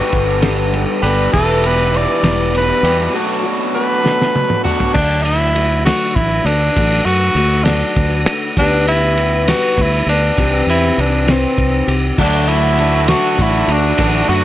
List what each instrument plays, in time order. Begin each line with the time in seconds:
Already playing: overdriven electric guitar G2 D3 G3 B3 D4 G4, steel-string acoustic guitar B3 D4 A4, tenor saxophone F#4
0.12 fingered electric bass G1, steel-string acoustic guitar G3 B3 D4 A4, kick, ride
0.41 steel-string acoustic guitar G3 B3 D4 A4, snare, ride
0.72 steel-string acoustic guitar G3 B3 D4 A4, ride
1.02 fingered electric bass G1, overdriven electric guitar G2 D3 G3 B3 D4 G4, steel-string acoustic guitar B3 D4 A4, tenor saxophone B4, ride
1.33 fingered electric bass E1, overdriven electric guitar E2 B2 E3 G3 E4 G4, steel-string acoustic guitar E3 G3 B3 E4, tenor saxophone A4, kick, ride
1.64 steel-string acoustic guitar B3 E4, tenor saxophone B4, ride
1.91 steel-string acoustic guitar G3 B3 E4, ride
1.96 tenor saxophone D5
2.23 fingered electric bass E1, steel-string acoustic guitar E3 G3 B3 E4, snare, ride
2.52 steel-string acoustic guitar G3 B3 E4 F#4, ride
2.58 tenor saxophone B4
2.83 fingered electric bass E2, overdriven electric guitar E2 B2 E3 G3 E4 G4, steel-string acoustic guitar B3 E4 F#4, ride
3.13 steel-string acoustic guitar B2 F#3 A3 D4 F#4, overdriven electric guitar B2 F#3 B3 D4
3.17 overdriven electric guitar F#4
3.44 steel-string acoustic guitar A3 D4 F#4
3.72 steel-string acoustic guitar F#3 A3 D4 F#4, tenor saxophone B4
4.02 steel-string acoustic guitar B2 F#3 A3 D4 F#4, snare
4.22 snare
4.33 steel-string acoustic guitar F#3 A3 D4 F#4, high tom
4.50 mid tom
4.63 steel-string acoustic guitar A3 D4 F#4, overdriven electric guitar D4 F#4, tenor saxophone F#4, mid tom
4.67 overdriven electric guitar B2 F#3 B3
4.80 floor tom
4.93 fingered electric bass D2, steel-string acoustic guitar D3 F#3 A3 D4 F#4, tenor saxophone D4, kick, crash
5.23 tenor saxophone E4, ride
5.54 steel-string acoustic guitar F#3 A3 D4 F#4, ride
5.85 steel-string acoustic guitar D3 F#3 A3 D4 F#4, tenor saxophone F#4, snare, ride
6.15 fingered electric bass A1, tenor saxophone E4, kick, ride
6.45 fingered electric bass D2, steel-string acoustic guitar A3 D4 F#4, tenor saxophone D4, ride
6.75 fingered electric bass A1, steel-string acoustic guitar D3 F#3 A3 D4 F#4, kick, ride
7.05 fingered electric bass F#2, tenor saxophone F#4, ride
7.35 fingered electric bass D2, steel-string acoustic guitar F#3 A3 D4 F#4, ride
7.64 tenor saxophone D4, steel-string acoustic guitar D4 F#4, snare, ride
7.68 steel-string acoustic guitar D3 F#3 A3
7.96 fingered electric bass D2, kick, ride
8.26 fingered electric bass D3, steel-string acoustic guitar A3 D4 F#4, ride
8.57 fingered electric bass D2, steel-string acoustic guitar D3 G3 B3 D4 G4, tenor saxophone D4, kick, ride
8.88 tenor saxophone E4, ride
9.17 steel-string acoustic guitar G3 B3 D4 G4, ride
9.48 steel-string acoustic guitar D3 G3 B3 D4, tenor saxophone F#4, snare, ride
9.78 fingered electric bass D2, tenor saxophone E4, kick, ride
10.06 fingered electric bass D2, steel-string acoustic guitar B3 D4 G4, tenor saxophone D4, ride
10.37 fingered electric bass C2, steel-string acoustic guitar C3 E3 C4 E4 G4, kick, ride
10.67 fingered electric bass E2, tenor saxophone E4, ride
10.97 fingered electric bass C2, steel-string acoustic guitar E3 C4 E4 G4, tenor saxophone D4, ride
11.26 steel-string acoustic guitar C3 E3 C4 E4 G4, snare, ride
11.30 tenor saxophone C4
11.58 fingered electric bass C2, kick, ride
11.87 fingered electric bass C2, steel-string acoustic guitar C4 E4 G4, ride
12.17 fingered electric bass D2, steel-string acoustic guitar D3 F#3 A3 D4 F#4, overdriven electric guitar D3 A3 D4 F#4, tenor saxophone D4, kick, crash
12.48 overdriven electric guitar A3 D4 F#4, tenor saxophone E4, ride
12.79 overdriven electric guitar D3 A3 D4 F#4, steel-string acoustic guitar F#3 A3 D4 F#4, ride
13.08 overdriven electric guitar D3 A3 D4 F#4, steel-string acoustic guitar F#3 A3 D4 F#4, tenor saxophone F#4, snare, ride
13.12 steel-string acoustic guitar D3
13.39 fingered electric bass A1, overdriven electric guitar D3 A3 D4 F#4, tenor saxophone E4, kick, ride
13.66 fingered electric bass D2, steel-string acoustic guitar A3 D4 F#4, ride
13.72 tenor saxophone D4
13.97 fingered electric bass A1, steel-string acoustic guitar D3 F#3 A3 D4 F#4, overdriven electric guitar D3 A3 D4, kick, ride
14.02 overdriven electric guitar F#4
14.28 fingered electric bass F#2, overdriven electric guitar A3 D4 F#4, tenor saxophone F#4, ride